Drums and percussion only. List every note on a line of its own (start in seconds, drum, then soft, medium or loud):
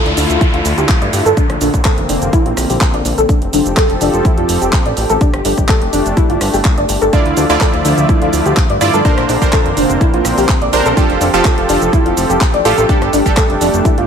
0.06 closed hi-hat soft
0.17 open hi-hat loud
0.17 shaker medium
0.30 closed hi-hat soft
0.30 shaker soft
0.41 kick loud
0.41 closed hi-hat medium
0.41 shaker soft
0.54 closed hi-hat soft
0.65 open hi-hat loud
0.65 shaker medium
0.78 closed hi-hat soft
0.78 shaker soft
0.89 kick loud
0.89 clap loud
0.89 closed hi-hat medium
0.89 shaker soft
1.02 closed hi-hat soft
1.13 open hi-hat loud
1.13 shaker medium
1.26 closed hi-hat soft
1.26 shaker soft
1.37 kick loud
1.37 closed hi-hat medium
1.37 shaker soft
1.50 cross-stick medium
1.50 closed hi-hat soft
1.61 open hi-hat loud
1.61 shaker medium
1.74 kick medium
1.74 closed hi-hat soft
1.74 shaker soft
1.85 kick loud
1.85 cross-stick medium
1.85 clap loud
1.85 closed hi-hat medium
1.85 shaker soft
1.98 closed hi-hat soft
2.09 open hi-hat loud
2.09 shaker medium
2.22 closed hi-hat soft
2.22 shaker soft
2.33 kick loud
2.33 closed hi-hat medium
2.33 shaker soft
2.46 closed hi-hat soft
2.57 cross-stick medium
2.57 open hi-hat loud
2.57 shaker medium
2.70 open hi-hat medium
2.70 shaker soft
2.81 kick loud
2.81 clap loud
2.81 closed hi-hat medium
2.81 shaker soft
2.94 closed hi-hat soft
3.05 open hi-hat loud
3.05 shaker medium
3.18 closed hi-hat soft
3.18 shaker soft
3.29 kick loud
3.29 closed hi-hat medium
3.29 shaker soft
3.42 closed hi-hat soft
3.53 open hi-hat loud
3.53 shaker medium
3.66 closed hi-hat soft
3.66 shaker soft
3.77 kick loud
3.77 cross-stick medium
3.77 clap loud
3.77 closed hi-hat medium
3.77 shaker soft
3.90 closed hi-hat soft
4.01 open hi-hat loud
4.01 shaker medium
4.14 closed hi-hat soft
4.14 shaker soft
4.25 kick loud
4.25 closed hi-hat medium
4.25 shaker soft
4.38 closed hi-hat soft
4.49 open hi-hat loud
4.49 shaker medium
4.62 closed hi-hat soft
4.62 shaker soft
4.73 kick loud
4.73 clap loud
4.73 closed hi-hat medium
4.73 shaker soft
4.86 closed hi-hat soft
4.97 open hi-hat loud
4.97 shaker medium
5.10 closed hi-hat soft
5.10 shaker soft
5.21 kick loud
5.21 closed hi-hat medium
5.21 shaker soft
5.34 cross-stick medium
5.34 closed hi-hat soft
5.45 open hi-hat loud
5.45 shaker medium
5.58 kick medium
5.58 closed hi-hat soft
5.58 shaker soft
5.68 kick loud
5.68 cross-stick medium
5.68 clap loud
5.68 closed hi-hat medium
5.68 shaker soft
5.82 closed hi-hat soft
5.93 open hi-hat loud
5.93 shaker medium
6.06 closed hi-hat soft
6.06 shaker soft
6.17 kick loud
6.17 closed hi-hat medium
6.17 shaker soft
6.30 closed hi-hat soft
6.41 cross-stick medium
6.41 open hi-hat loud
6.41 shaker medium
6.54 open hi-hat medium
6.54 shaker soft
6.65 kick loud
6.65 clap loud
6.65 closed hi-hat medium
6.65 shaker soft
6.78 closed hi-hat soft
6.89 open hi-hat loud
6.89 shaker medium
7.02 closed hi-hat soft
7.02 shaker soft
7.13 kick loud
7.13 closed hi-hat medium
7.13 shaker soft
7.26 closed hi-hat soft
7.37 open hi-hat loud
7.37 shaker medium
7.50 closed hi-hat soft
7.50 shaker soft
7.61 kick loud
7.61 cross-stick medium
7.61 clap loud
7.61 closed hi-hat medium
7.61 shaker soft
7.74 closed hi-hat soft
7.85 open hi-hat loud
7.85 shaker medium
7.98 closed hi-hat soft
7.98 shaker soft
8.09 kick loud
8.09 closed hi-hat medium
8.09 shaker soft
8.22 closed hi-hat soft
8.33 open hi-hat loud
8.33 shaker medium
8.46 closed hi-hat soft
8.46 shaker soft
8.57 kick loud
8.57 clap loud
8.57 closed hi-hat medium
8.57 shaker soft
8.70 closed hi-hat soft
8.81 open hi-hat loud
8.81 shaker medium
8.94 closed hi-hat soft
8.94 shaker soft
9.05 kick loud
9.05 closed hi-hat medium
9.05 shaker soft
9.18 cross-stick medium
9.18 closed hi-hat soft
9.29 open hi-hat loud
9.29 shaker medium
9.42 kick medium
9.42 closed hi-hat soft
9.42 shaker soft
9.53 kick loud
9.53 cross-stick medium
9.53 clap loud
9.53 closed hi-hat medium
9.53 shaker soft
9.66 closed hi-hat soft
9.77 open hi-hat loud
9.77 shaker medium
9.90 closed hi-hat soft
9.90 shaker soft
10.01 kick loud
10.01 closed hi-hat medium
10.01 shaker soft
10.14 closed hi-hat soft
10.25 cross-stick medium
10.25 open hi-hat loud
10.25 shaker medium
10.38 open hi-hat medium
10.38 shaker soft
10.49 kick loud
10.49 clap loud
10.49 closed hi-hat medium
10.49 shaker soft
10.62 closed hi-hat soft
10.73 open hi-hat loud
10.73 shaker medium
10.86 closed hi-hat soft
10.86 shaker soft
10.97 kick loud
10.97 closed hi-hat medium
10.97 shaker soft
11.10 closed hi-hat soft
11.21 open hi-hat loud
11.21 shaker medium
11.34 closed hi-hat soft
11.34 shaker soft
11.45 kick loud
11.45 cross-stick medium
11.45 clap loud
11.45 closed hi-hat medium
11.45 shaker soft
11.58 closed hi-hat soft
11.69 open hi-hat loud
11.69 shaker medium
11.82 closed hi-hat soft
11.82 shaker soft
11.93 kick loud
11.93 closed hi-hat medium
11.93 shaker soft
12.06 closed hi-hat soft
12.17 open hi-hat loud
12.17 shaker medium
12.30 closed hi-hat soft
12.30 shaker soft
12.41 kick loud
12.41 clap loud
12.41 closed hi-hat medium
12.41 shaker soft
12.54 closed hi-hat soft
12.65 open hi-hat loud
12.65 shaker medium
12.78 closed hi-hat soft
12.78 shaker soft
12.89 kick loud
12.89 closed hi-hat medium
12.89 shaker soft
13.02 cross-stick medium
13.02 closed hi-hat soft
13.13 open hi-hat loud
13.13 shaker medium
13.26 kick medium
13.26 closed hi-hat soft
13.26 shaker soft
13.37 kick loud
13.37 cross-stick medium
13.37 clap loud
13.37 closed hi-hat medium
13.37 shaker soft
13.50 closed hi-hat soft
13.61 open hi-hat loud
13.61 shaker medium
13.74 closed hi-hat soft
13.74 shaker soft
13.85 kick loud
13.85 closed hi-hat medium
13.85 shaker soft
13.98 closed hi-hat soft